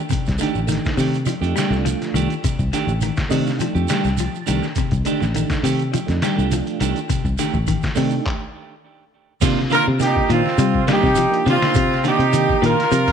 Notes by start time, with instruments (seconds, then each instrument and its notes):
0.10 clean electric guitar C3, muted fingered electric bass stroke, kick, closed hi-hat, shekere
0.26 fingered electric bass C2, kick, snare, closed hi-hat, shekere
0.38 clean electric guitar D3 D#3 A3 D4, tonewheel organ A3 D4 D#4, shekere
0.43 clean electric guitar G4, closed hi-hat
0.55 fingered electric bass A1, shekere
0.67 clean electric guitar D#3, tonewheel organ A3 D4 D#4, shekere
0.72 snare, closed hi-hat
0.84 kick, snare, closed hi-hat, shekere
0.97 fingered electric bass C3, clean electric guitar D#3 A3 D4 G4, open hi-hat, shekere
1.14 closed hi-hat, shekere
1.26 clean electric guitar F3, tonewheel organ D4 D#4, closed hi-hat, shekere
1.41 fingered electric bass F2, tonewheel organ A3 D4 D#4, clean electric guitar A3 D4 G4, closed hi-hat, shekere
1.56 clean electric guitar G3 A3 D4 G4, snare, closed hi-hat, shekere
1.70 fingered electric bass C2, tonewheel organ A3 D4 F4, snare, shekere
1.85 clean electric guitar F3, closed hi-hat, shekere
2.02 snare, closed hi-hat, shekere
2.14 fingered electric bass C2, clean electric guitar D#3 A3 D4 G4, closed hi-hat, shekere
2.30 closed hi-hat, shekere
2.44 clean electric guitar C3, muted fingered electric bass stroke, kick, closed hi-hat, shekere
2.59 fingered electric bass C2, kick, shekere
2.73 clean electric guitar D3 D#3 A3 D4 G4, snare, closed hi-hat, shekere
2.87 fingered electric bass A1, shekere
3.01 clean electric guitar D#3, closed hi-hat, shekere
3.16 kick, snare, closed hi-hat, shekere
3.29 fingered electric bass C3, clean electric guitar D#3 A3 D4, tonewheel organ A3 D4 D#4 D#5, open hi-hat, shekere
3.46 tonewheel organ F5, snare, shekere
3.58 clean electric guitar F3, tonewheel organ G5, closed hi-hat, shekere
3.75 fingered electric bass F2, clean electric guitar A3 G4, shekere
3.88 clean electric guitar D#3 G3 A3 D4 G4, snare, closed hi-hat, shekere
4.04 fingered electric bass C2, snare, shekere
4.17 clean electric guitar F3, tonewheel organ A5, closed hi-hat, shekere
4.35 shekere
4.46 fingered electric bass C2, clean electric guitar D#3 A3 D4 G4, closed hi-hat, shekere
4.62 snare, shekere
4.76 clean electric guitar C3, muted fingered electric bass stroke, kick, closed hi-hat, shekere
4.91 fingered electric bass C2, kick, closed hi-hat, shekere
5.05 clean electric guitar D3 D#3 A3 D4 G4, tonewheel organ A3 D4 D#4, closed hi-hat, shekere
5.20 fingered electric bass A1, snare, shekere
5.34 clean electric guitar D#3, tonewheel organ A3 D4 D#4, closed hi-hat, shekere
5.50 kick, snare, closed hi-hat, shekere
5.63 fingered electric bass C3, clean electric guitar D#3 A3 G4, open hi-hat, shekere
5.79 closed hi-hat, shekere
5.91 clean electric guitar F3, tonewheel organ D4 D#4, closed hi-hat, shekere
6.06 fingered electric bass F2, tonewheel organ A3 D4 D#4, snare, closed hi-hat, shekere
6.22 clean electric guitar D#3 G3 D4 G4, muted clean electric guitar stroke, snare, closed hi-hat, shekere
6.36 fingered electric bass C2, tonewheel organ A3 D4 F4, clean electric guitar A3 D4 G4, shekere
6.52 clean electric guitar F3, closed hi-hat, shekere
6.67 closed hi-hat, shekere
6.80 fingered electric bass C2, clean electric guitar D#3 A3 D4 G4, closed hi-hat, shekere
6.96 closed hi-hat, shekere
7.09 clean electric guitar C3, muted fingered electric bass stroke, kick, closed hi-hat, shekere
7.25 fingered electric bass C2, kick, shekere
7.38 clean electric guitar D3 D#3 A3 G4, muted clean electric guitar stroke, snare, closed hi-hat, shekere
7.53 fingered electric bass A1, kick, shekere
7.67 clean electric guitar D#3, kick, closed hi-hat, shekere
7.82 kick, snare, closed hi-hat, shekere
7.95 fingered electric bass C3, clean electric guitar D#3 A3 D4 G4, tonewheel organ A3 D4 D#4, open hi-hat, shekere
8.10 shekere
8.26 kick, clap
9.41 fingered electric bass C3, clean electric guitar C3 D#3 A#3 D4 F4, kick, snare, closed hi-hat, crash, shekere
9.59 snare
9.70 clean electric guitar D3 D#3 A#3 D4 F4, horn section A#4, snare, closed hi-hat, shekere
9.74 trumpet F4
9.88 fingered electric bass C3
9.99 tonewheel organ A#3 D4 D#4 F4, horn section G4, muted clean electric guitar stroke, snare, closed hi-hat, shekere
10.05 trumpet D#4
10.16 kick
10.29 fingered electric bass A#2, clean electric guitar D#3 A#3 D4 F4, horn section F4, closed hi-hat, shekere
10.34 trumpet C4
10.46 snare
10.58 fingered electric bass C3, clean electric guitar G3, closed hi-hat, shekere
10.74 kick
10.86 clean electric guitar D#3 G3 A#3 D4 F4, tonewheel organ A#3 D4 D#4 F4, snare, closed hi-hat, shekere
10.92 trumpet D#4, horn section G4
11.03 fingered electric bass C3, kick, snare
11.15 clean electric guitar F3, closed hi-hat, shekere
11.30 tonewheel organ A#3 D4 D#4 F4, closed hi-hat
11.45 fingered electric bass C3, clean electric guitar D3 D#3 D4 F4, snare, closed hi-hat, shekere
11.49 trumpet C4, horn section F4
11.62 muted fingered electric bass stroke, snare, closed hi-hat
11.74 fingered electric bass C3, clean electric guitar C3, kick, closed hi-hat, shekere
11.91 snare
12.04 clean electric guitar D3 D#3 A#3 D4 F4, horn section G4, closed hi-hat, shekere
12.08 trumpet D#4
12.19 fingered electric bass C3, closed hi-hat
12.32 clean electric guitar D#3, tonewheel organ A#3 D4 D#4 G4, closed hi-hat, shekere
12.49 kick
12.61 fingered electric bass A#2, clean electric guitar D#3 A#3 D4 F4, horn section A#4, closed hi-hat, shekere
12.67 trumpet F4
12.80 snare, closed hi-hat
12.91 fingered electric bass C3, clean electric guitar F3, closed hi-hat, shekere
13.08 kick, snare, closed hi-hat